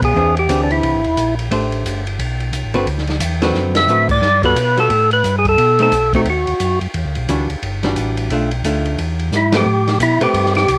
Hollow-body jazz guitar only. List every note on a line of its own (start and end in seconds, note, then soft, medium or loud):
0.16 0.34 E3 soft
0.16 0.35 C4 soft
0.16 0.35 D4 medium
0.16 0.35 G#4 medium
0.49 1.00 E3 medium
0.49 1.00 C4 soft
0.49 1.00 D4 soft
0.49 1.00 G#4 medium
1.51 2.02 A3 medium
1.51 2.02 D4 medium
1.51 2.02 G4 medium
1.51 2.02 C5 medium
2.74 2.86 D3 medium
2.74 2.86 C4 medium
2.74 2.86 F#4 medium
2.74 2.86 B4 medium
3.42 3.86 D3 medium
3.42 3.86 C4 medium
3.42 3.87 F#4 medium
3.42 3.87 B4 medium
3.89 4.08 D3 soft
3.89 4.08 C4 soft
3.89 4.08 F#4 medium
3.89 4.08 B4 medium
4.44 4.56 G3 medium
4.44 4.56 B3 medium
4.44 4.56 F#4 medium
4.44 4.56 A4 medium
4.77 4.89 G3 medium
4.77 4.90 B3 medium
4.77 4.90 F#4 medium
4.77 4.90 A4 medium
5.80 5.91 A3 medium
5.80 5.92 C4 medium
5.80 5.92 D#4 medium
6.15 6.26 A3 medium
6.15 6.26 C4 medium
6.15 6.26 D#4 medium
7.29 7.47 E3 medium
7.29 7.48 G3 soft
7.29 7.48 D4 medium
7.29 7.48 F#4 medium
7.84 8.28 E3 soft
7.84 8.28 G3 medium
7.84 8.28 D4 medium
7.84 8.28 F#4 medium
8.31 8.50 A3 medium
8.31 8.50 D4 medium
8.31 8.50 F4 medium
8.65 8.98 A3 soft
8.65 8.99 D4 medium
8.65 8.99 F4 medium
9.54 9.65 A3 medium
9.54 9.65 C4 medium
9.54 9.65 G4 medium
9.54 9.65 B4 medium
10.21 10.65 A3 medium
10.21 10.65 C4 medium
10.21 10.65 G4 medium
10.21 10.66 B4 medium